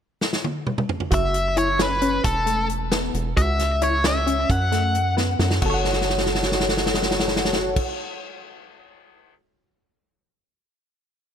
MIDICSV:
0, 0, Header, 1, 5, 480
1, 0, Start_track
1, 0, Key_signature, 3, "minor"
1, 0, Tempo, 450789
1, 1190, Time_signature, 5, 3, 24, 8
1, 12082, End_track
2, 0, Start_track
2, 0, Title_t, "Lead electric guitar"
2, 0, Program_c, 0, 29
2, 1215, Note_on_c, 0, 76, 94
2, 1678, Note_off_c, 0, 76, 0
2, 1682, Note_on_c, 0, 73, 84
2, 1900, Note_off_c, 0, 73, 0
2, 1935, Note_on_c, 0, 71, 72
2, 2389, Note_off_c, 0, 71, 0
2, 2393, Note_on_c, 0, 69, 69
2, 2838, Note_off_c, 0, 69, 0
2, 3591, Note_on_c, 0, 76, 83
2, 4079, Note_off_c, 0, 76, 0
2, 4083, Note_on_c, 0, 73, 70
2, 4323, Note_off_c, 0, 73, 0
2, 4328, Note_on_c, 0, 76, 77
2, 4801, Note_off_c, 0, 76, 0
2, 4805, Note_on_c, 0, 78, 88
2, 5473, Note_off_c, 0, 78, 0
2, 12082, End_track
3, 0, Start_track
3, 0, Title_t, "Synth arpeggio sound"
3, 0, Program_c, 1, 84
3, 1178, Note_on_c, 1, 66, 87
3, 1449, Note_off_c, 1, 66, 0
3, 1668, Note_on_c, 1, 64, 76
3, 1802, Note_off_c, 1, 64, 0
3, 1907, Note_on_c, 1, 61, 87
3, 2042, Note_off_c, 1, 61, 0
3, 2148, Note_on_c, 1, 61, 78
3, 2416, Note_off_c, 1, 61, 0
3, 2621, Note_on_c, 1, 57, 71
3, 2891, Note_off_c, 1, 57, 0
3, 3108, Note_on_c, 1, 59, 81
3, 3376, Note_off_c, 1, 59, 0
3, 3583, Note_on_c, 1, 66, 93
3, 3852, Note_off_c, 1, 66, 0
3, 4065, Note_on_c, 1, 64, 78
3, 4200, Note_off_c, 1, 64, 0
3, 4310, Note_on_c, 1, 61, 81
3, 4443, Note_off_c, 1, 61, 0
3, 4544, Note_on_c, 1, 61, 74
3, 4812, Note_off_c, 1, 61, 0
3, 5024, Note_on_c, 1, 57, 73
3, 5292, Note_off_c, 1, 57, 0
3, 5504, Note_on_c, 1, 59, 83
3, 5772, Note_off_c, 1, 59, 0
3, 5982, Note_on_c, 1, 66, 70
3, 6024, Note_on_c, 1, 69, 64
3, 6067, Note_on_c, 1, 73, 68
3, 6111, Note_on_c, 1, 78, 67
3, 8316, Note_off_c, 1, 66, 0
3, 8338, Note_off_c, 1, 69, 0
3, 8359, Note_off_c, 1, 73, 0
3, 8381, Note_off_c, 1, 78, 0
3, 12082, End_track
4, 0, Start_track
4, 0, Title_t, "Analog synth bass"
4, 0, Program_c, 2, 38
4, 1189, Note_on_c, 2, 30, 101
4, 2347, Note_off_c, 2, 30, 0
4, 2392, Note_on_c, 2, 28, 89
4, 3308, Note_off_c, 2, 28, 0
4, 3345, Note_on_c, 2, 28, 89
4, 3564, Note_off_c, 2, 28, 0
4, 3592, Note_on_c, 2, 37, 102
4, 4747, Note_off_c, 2, 37, 0
4, 4788, Note_on_c, 2, 42, 92
4, 5704, Note_off_c, 2, 42, 0
4, 5742, Note_on_c, 2, 42, 93
4, 5961, Note_off_c, 2, 42, 0
4, 5989, Note_on_c, 2, 30, 90
4, 8320, Note_off_c, 2, 30, 0
4, 12082, End_track
5, 0, Start_track
5, 0, Title_t, "Drums"
5, 228, Note_on_c, 9, 38, 65
5, 334, Note_off_c, 9, 38, 0
5, 351, Note_on_c, 9, 38, 66
5, 457, Note_off_c, 9, 38, 0
5, 473, Note_on_c, 9, 48, 72
5, 580, Note_off_c, 9, 48, 0
5, 709, Note_on_c, 9, 47, 76
5, 816, Note_off_c, 9, 47, 0
5, 831, Note_on_c, 9, 47, 83
5, 938, Note_off_c, 9, 47, 0
5, 950, Note_on_c, 9, 43, 83
5, 1057, Note_off_c, 9, 43, 0
5, 1067, Note_on_c, 9, 43, 85
5, 1174, Note_off_c, 9, 43, 0
5, 1185, Note_on_c, 9, 42, 77
5, 1191, Note_on_c, 9, 36, 104
5, 1292, Note_off_c, 9, 42, 0
5, 1297, Note_off_c, 9, 36, 0
5, 1428, Note_on_c, 9, 42, 56
5, 1534, Note_off_c, 9, 42, 0
5, 1669, Note_on_c, 9, 42, 57
5, 1776, Note_off_c, 9, 42, 0
5, 1910, Note_on_c, 9, 38, 92
5, 1910, Note_on_c, 9, 42, 76
5, 2017, Note_off_c, 9, 38, 0
5, 2017, Note_off_c, 9, 42, 0
5, 2146, Note_on_c, 9, 42, 55
5, 2253, Note_off_c, 9, 42, 0
5, 2387, Note_on_c, 9, 42, 78
5, 2390, Note_on_c, 9, 36, 103
5, 2493, Note_off_c, 9, 42, 0
5, 2496, Note_off_c, 9, 36, 0
5, 2627, Note_on_c, 9, 42, 62
5, 2734, Note_off_c, 9, 42, 0
5, 2869, Note_on_c, 9, 42, 60
5, 2976, Note_off_c, 9, 42, 0
5, 3105, Note_on_c, 9, 38, 98
5, 3105, Note_on_c, 9, 42, 70
5, 3211, Note_off_c, 9, 38, 0
5, 3211, Note_off_c, 9, 42, 0
5, 3348, Note_on_c, 9, 42, 56
5, 3455, Note_off_c, 9, 42, 0
5, 3589, Note_on_c, 9, 42, 77
5, 3590, Note_on_c, 9, 36, 99
5, 3695, Note_off_c, 9, 42, 0
5, 3696, Note_off_c, 9, 36, 0
5, 3827, Note_on_c, 9, 38, 31
5, 3827, Note_on_c, 9, 42, 57
5, 3933, Note_off_c, 9, 38, 0
5, 3933, Note_off_c, 9, 42, 0
5, 4063, Note_on_c, 9, 42, 54
5, 4169, Note_off_c, 9, 42, 0
5, 4303, Note_on_c, 9, 38, 94
5, 4303, Note_on_c, 9, 42, 71
5, 4410, Note_off_c, 9, 38, 0
5, 4410, Note_off_c, 9, 42, 0
5, 4549, Note_on_c, 9, 42, 56
5, 4656, Note_off_c, 9, 42, 0
5, 4787, Note_on_c, 9, 42, 72
5, 4788, Note_on_c, 9, 36, 102
5, 4893, Note_off_c, 9, 42, 0
5, 4894, Note_off_c, 9, 36, 0
5, 5029, Note_on_c, 9, 38, 33
5, 5029, Note_on_c, 9, 42, 59
5, 5135, Note_off_c, 9, 38, 0
5, 5135, Note_off_c, 9, 42, 0
5, 5267, Note_on_c, 9, 42, 53
5, 5374, Note_off_c, 9, 42, 0
5, 5510, Note_on_c, 9, 38, 58
5, 5617, Note_off_c, 9, 38, 0
5, 5744, Note_on_c, 9, 38, 80
5, 5851, Note_off_c, 9, 38, 0
5, 5863, Note_on_c, 9, 38, 84
5, 5969, Note_off_c, 9, 38, 0
5, 5982, Note_on_c, 9, 49, 95
5, 5986, Note_on_c, 9, 36, 101
5, 6089, Note_off_c, 9, 49, 0
5, 6092, Note_off_c, 9, 36, 0
5, 6224, Note_on_c, 9, 38, 45
5, 6315, Note_off_c, 9, 38, 0
5, 6315, Note_on_c, 9, 38, 46
5, 6403, Note_off_c, 9, 38, 0
5, 6403, Note_on_c, 9, 38, 46
5, 6493, Note_off_c, 9, 38, 0
5, 6493, Note_on_c, 9, 38, 45
5, 6581, Note_off_c, 9, 38, 0
5, 6581, Note_on_c, 9, 38, 54
5, 6669, Note_off_c, 9, 38, 0
5, 6669, Note_on_c, 9, 38, 52
5, 6761, Note_off_c, 9, 38, 0
5, 6761, Note_on_c, 9, 38, 53
5, 6846, Note_off_c, 9, 38, 0
5, 6846, Note_on_c, 9, 38, 62
5, 6938, Note_off_c, 9, 38, 0
5, 6938, Note_on_c, 9, 38, 59
5, 7030, Note_off_c, 9, 38, 0
5, 7030, Note_on_c, 9, 38, 62
5, 7121, Note_off_c, 9, 38, 0
5, 7121, Note_on_c, 9, 38, 62
5, 7213, Note_off_c, 9, 38, 0
5, 7213, Note_on_c, 9, 38, 67
5, 7308, Note_off_c, 9, 38, 0
5, 7308, Note_on_c, 9, 38, 72
5, 7392, Note_off_c, 9, 38, 0
5, 7392, Note_on_c, 9, 38, 71
5, 7480, Note_off_c, 9, 38, 0
5, 7480, Note_on_c, 9, 38, 73
5, 7572, Note_off_c, 9, 38, 0
5, 7572, Note_on_c, 9, 38, 74
5, 7663, Note_off_c, 9, 38, 0
5, 7663, Note_on_c, 9, 38, 80
5, 7751, Note_off_c, 9, 38, 0
5, 7751, Note_on_c, 9, 38, 74
5, 7840, Note_off_c, 9, 38, 0
5, 7840, Note_on_c, 9, 38, 79
5, 7933, Note_off_c, 9, 38, 0
5, 7933, Note_on_c, 9, 38, 79
5, 8018, Note_off_c, 9, 38, 0
5, 8018, Note_on_c, 9, 38, 81
5, 8125, Note_off_c, 9, 38, 0
5, 8266, Note_on_c, 9, 49, 91
5, 8267, Note_on_c, 9, 36, 99
5, 8372, Note_off_c, 9, 49, 0
5, 8374, Note_off_c, 9, 36, 0
5, 12082, End_track
0, 0, End_of_file